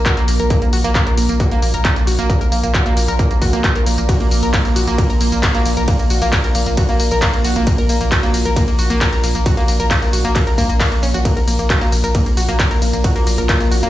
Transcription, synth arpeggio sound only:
0.06 F#4
0.17 A#3
0.28 A#3
0.40 A#4
0.51 A#3
0.62 A#3
0.73 F#4
0.84 A#3
0.95 A#3
1.07 A#4
1.18 A#3
1.29 A#3
1.40 F#4
1.52 A#3
1.63 A#3
1.74 A#4
1.85 A#3
1.96 A#3
2.07 F#4
2.19 A#3
2.29 A#3
2.41 A#4
2.52 A#3
2.64 A#3
2.74 F#4
2.86 A#3
2.97 A#3
3.08 A#4
3.19 A#3
3.31 A#3
3.42 F#4
3.53 A#3
3.64 A#3
3.76 A#4
3.87 A#3
3.98 A#3
4.09 F#4
4.21 A#3
4.31 A#3
4.43 A#4
4.54 A#3
4.65 A#3
4.76 F#4
4.87 A#3
4.98 A#3
5.10 A#4
5.21 A#3
5.32 A#3
5.43 F#4
5.55 A#3
5.66 A#3
5.77 A#4
5.88 A#3
6.00 A#3
6.10 F#4
6.22 A#3
6.33 A#3
6.44 A#4
6.55 A#3
6.67 A#3
6.78 F#4
6.89 A#3
7.00 A#3
7.12 A#4
7.22 A#3
7.34 A#3
7.45 F#4
7.56 A#3
7.67 A#3
7.79 A#4
7.90 A#3
8.01 A#3
8.12 F#4
8.23 A#3
8.34 A#3
8.45 A#4
8.56 A#3
8.68 A#3
8.79 F#4
8.90 A#3
9.01 A#3
9.13 A#4
9.24 A#3
9.35 A#3
9.46 F#4
9.57 A#3
9.68 A#3
9.80 A#4
9.91 A#3
10.02 A#3
10.13 F#4
10.25 A#3
10.35 A#3
10.47 A#4
10.58 A#3
10.69 A#3
10.80 A#3
10.92 A#3
11.03 C#4
11.14 F#4
11.25 A#3
11.37 A#4
11.48 A#3
11.59 A#3
11.70 F#4
11.81 A#3
11.92 A#3
12.04 A#4
12.15 A#3
12.26 A#3
12.37 F#4
12.49 A#3
12.59 A#3
12.71 A#4
12.82 A#3
12.93 A#3
13.04 F#4
13.16 A#3
13.27 A#3
13.38 A#4
13.49 A#3
13.61 A#3
13.71 F#4
13.83 A#3

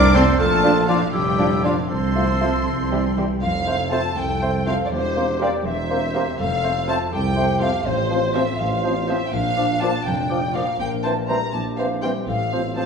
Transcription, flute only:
0.15 A5
0.64 F5
0.89 F5
1.39 F5
1.65 F5
2.16 F5
2.41 F5
2.91 E5
3.17 E5
3.43 F5
3.92 A5
4.17 G5
4.67 F5
4.92 C5
5.41 D5
5.66 E5
6.40 F5
6.89 A5
7.13 G5
7.62 F5
7.86 C5
8.35 E5
8.60 F5
9.08 E5
9.33 F5
9.82 A5
10.06 G5
10.55 F5
10.80 G5
11.04 A5
11.29 A#5
11.54 A5
11.79 F5
12.03 G5
12.28 F5
12.77 A5

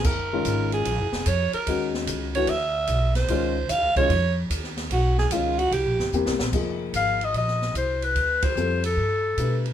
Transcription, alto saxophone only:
0.06 A#4
0.74 G#4
1.28 C#5
1.54 A#4
2.35 C#5
2.49 E5
3.16 C5
3.71 F5
3.97 C#5
4.93 F#4
5.19 G#4
5.33 F4
5.58 F#4
5.73 G4

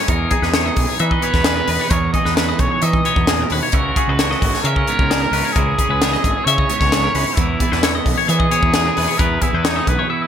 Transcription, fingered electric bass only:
0.08 E2
0.42 E2
0.77 B1
1.00 E3
1.34 E2
1.68 E2
1.91 E2
2.25 E2
2.59 B1
2.82 E3
3.16 E2
3.51 D#2
3.73 C#2
4.08 C#2
4.42 G#1
4.64 C#3
4.99 C#2
5.31 C#2
5.56 C#2
5.89 C#2
6.24 G#1
6.46 C#3
6.81 C#2
7.14 C#2
7.38 E2
7.72 E2
8.06 B1
8.29 E3
8.63 E2
8.97 E2
9.19 E2
9.53 E2
9.87 B1

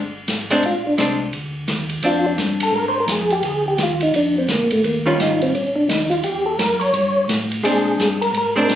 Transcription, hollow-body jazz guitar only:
0.50 G#3 C4 D4
0.98 G#3 C4 D4
2.04 C4 D4
5.06 D#3 G3 C#4 F4
7.63 G#3 C4 D4
8.56 G#3 C4 D4

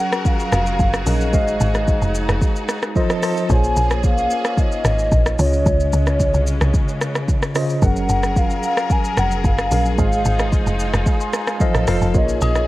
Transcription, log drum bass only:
0.53 F1
0.80 F#1
1.07 A#1
1.34 G#1
1.61 G#1
2.02 F1
2.29 F1
3.50 A#1
3.77 A#1
4.85 G#1
5.12 A#1
5.39 C#2
5.66 C#2
5.93 C#2
6.34 C2
6.61 C2
7.82 F#1
8.09 F#1
9.17 F1
9.44 F#1
9.71 A#1
9.98 G#1
10.25 G#1
10.66 F1
10.94 F1
11.75 A1
11.88 F1
12.02 F1
12.15 A#1
12.42 A#1

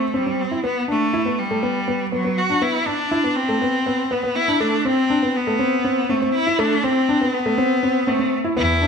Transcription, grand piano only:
0.14 C4
0.26 C4
0.51 E4
0.64 B3
0.88 D4
1.13 E4
1.26 B3
1.51 A3
1.63 B3
1.88 B3
2.12 B3
2.24 B3
2.50 D4
2.62 B3
2.86 D4
3.11 E4
3.24 B3
3.49 A3
3.62 B3
3.86 B3
4.11 B3
4.23 B3
4.48 D4
4.60 A3
4.85 C4
5.10 D4
5.23 B3
5.47 A3
5.59 C4
5.85 C4
6.09 C4
6.22 C4
6.47 E4
6.59 A3
6.84 C4
7.09 D4
7.21 B3
7.46 A3
7.58 C4
7.83 C4
8.07 C4
8.19 C4
8.44 E4
8.57 B3
8.82 D4

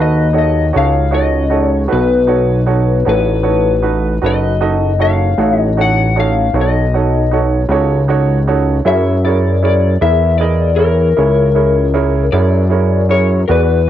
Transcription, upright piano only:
Already playing: D#4 F#4 A4 B4
0.33 D#4 F#4 A4 C#5
0.73 D#4 F#4 A4 C#5
1.11 D#4 F#4 A4 C#5
1.50 D#4 F#4 A4 C#5
1.88 D#4 F#4 A4 B4
2.27 D#4 F#4 A4 C#5
2.66 D#4 F#4 A4 C#5
3.05 D#4 F#4 A4 C#5
3.43 D#4 F#4 A4 C#5
3.82 D#4 F#4 A4 B4
4.22 D#4 F#4 A4 B4
4.61 D#4 F#4 A4 D#5
4.99 D#4 F#4 A4 C#5
5.38 D#4 F#4 A4 C#5
5.77 D#4 F#4 A4 C#5
6.16 D#4 F#4 A4 C#5
6.54 D#4 F#4 A4 C#5
6.94 D#4 F#4 A4 C#5
7.31 D#4 F#4 A4 C#5
7.70 D#4 F#4 A4 C#5
8.08 D#4 F#4 A4 C#5
8.47 D#4 F#4 A4 C#5
8.85 E4 G#4 A#4 C#5
9.25 E4 G#4 A#4 C#5
9.63 E4 G#4 A#4 C#5
10.01 E4 G#4 A#4 E5
10.40 E4 G#4 A#4 D#5
10.77 E4 G#4 A#4 C#5
11.17 E4 G#4 A#4 C#5
11.55 E4 G#4 A#4 C#5
11.94 E4 G#4 A#4 C#5
12.32 E4 G#4 A#4 C#5
12.70 E4 G#4 A#4 C#5
13.09 E4 G#4 A#4 C#5
13.49 F#4 G#4 B4 D5

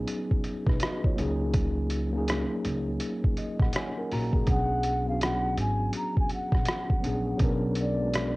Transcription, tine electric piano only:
Already playing: F#3 B3 C#4 D#4 G#4
0.68 D#4 B4
0.82 F#4 D#5
1.06 F4 C#5
1.15 F#3 A#3 C#4
1.20 D#4 G#4
2.11 F#3 A#3 C#4
2.16 D#4 G#4
3.38 D#5
3.62 F#5
3.76 F4 C#5 G#5
3.98 C#4 A#4
4.13 A#3 F#4 A#5
4.36 G#4
4.45 F#3 B3 C#4
4.50 D4 G#4
5.05 F#3 B3 C#4
5.10 D4 F#4
7.00 F#3 B3 C#4
7.05 D4 G#4
7.37 F#3 B3 C#4
7.42 D4 A#4
7.96 F#3 G#3 B3
8.01 D4 F#4

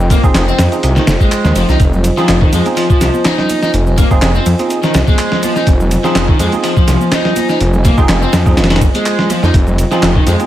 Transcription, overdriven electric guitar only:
0.11 A#3
0.48 C4
0.97 D#3
1.21 G#3
1.56 F3
1.69 D#4
2.18 F3
2.41 D#3
2.53 G#3
2.77 F3
2.90 F3
3.25 D#4
3.62 D#4
3.98 A#3
4.35 C4
4.83 D#3
5.08 G#3
5.43 F3
5.56 D#4
6.05 F3
6.29 D#3
6.40 G#3
6.64 F3
6.77 F3
7.12 D#4
7.50 D#4
7.85 A#3
8.22 C4
8.71 D#3
8.95 G#3
9.30 F3
9.43 D#4
9.92 F3
10.16 D#3
10.27 G#3

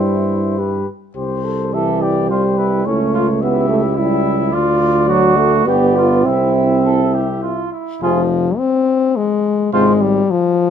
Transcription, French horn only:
Already playing: E4
0.58 G4
1.16 G4
1.44 A4
1.73 G4
2.87 E4
3.15 F4
3.42 G4
3.98 E4
4.26 E4
4.54 F4
5.09 F#4
5.67 G4
5.95 F4
6.26 E4
8.02 F3
8.58 C4
9.16 G#3
9.74 G#3
10.01 G3
10.31 F3

